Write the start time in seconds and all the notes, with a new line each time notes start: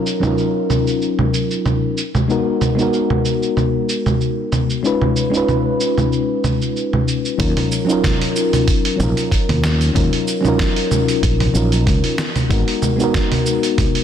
Already playing: F#3 C#4 D#4 F4 A#4
0.06 shaker
0.20 F#3 C#4 D#4, low conga, shaker
0.25 F4 A#4
0.38 shaker
0.70 low conga, shaker
0.87 shaker
1.02 shaker
1.19 low conga
1.34 shaker
1.51 shaker
1.66 low conga, shaker
1.98 shaker
2.15 low conga, shaker
2.28 G#3 B3 D#4 F#4 A#4, shaker
2.61 low conga, shaker
2.75 G#3 B3 D#4, shaker
2.81 F#4 A#4
2.93 shaker
3.10 low conga
3.25 shaker
3.43 shaker
3.57 low conga, shaker
3.89 shaker
4.06 low conga, shaker
4.21 shaker
4.52 low conga, shaker
4.70 shaker
4.83 G#3 C#4 D#4 F4 B4, shaker
5.02 low conga
5.16 shaker
5.30 G#3 C#4 D#4
5.34 F4 B4, shaker
5.48 low conga, shaker
5.80 shaker
5.98 low conga, shaker
6.13 shaker
6.44 low conga, shaker
6.62 shaker
6.76 shaker
6.93 low conga
7.08 shaker
7.25 shaker
7.38 D#2 F#3 C#4 D#4 F4 A#4, kick, open hi-hat, shaker
7.57 open hi-hat, low conga
7.72 shaker
7.85 F#3 C#4 D#4
7.89 F4 A#4, shaker
8.04 kick, snare, open hi-hat, low conga, shaker
8.21 open hi-hat
8.36 shaker
8.53 open hi-hat, low conga, shaker
8.68 kick, open hi-hat, shaker
8.85 open hi-hat
8.96 F#3 C#4 D#4
9.00 A#1 F4 A#4, low conga, shaker
9.17 open hi-hat, shaker
9.32 kick, open hi-hat, shaker
9.49 D#2, open hi-hat, low conga
9.64 snare, shaker
9.81 open hi-hat, shaker
9.94 D#2 F#3 C#4 D#4 F4 A#4, kick, open hi-hat, low conga, shaker
10.13 open hi-hat
10.28 shaker
10.41 F#3 C#4, low conga
10.45 D#4 F4 A#4, shaker
10.59 kick, snare, open hi-hat, shaker
10.76 open hi-hat
10.91 low conga, shaker
11.08 open hi-hat, shaker
11.23 A#1, kick, open hi-hat, shaker
11.40 open hi-hat, low conga
11.53 A#1 F#3 C#4 D#4 F4 A#4, shaker
11.72 open hi-hat, shaker
11.87 C#2, kick, open hi-hat, low conga, shaker
12.04 open hi-hat
12.18 snare, shaker
12.36 open hi-hat, low conga, shaker
12.49 G#1 G#3 B3 D#4 F#4 A#4, kick, open hi-hat, shaker
12.68 open hi-hat
12.82 low conga, shaker
12.96 G#3 B3 D#4, shaker
13.02 F#4 A#4
13.14 kick, snare, open hi-hat, shaker
13.32 open hi-hat, low conga
13.46 shaker
13.63 open hi-hat, shaker
13.78 kick, open hi-hat, low conga, shaker
13.95 open hi-hat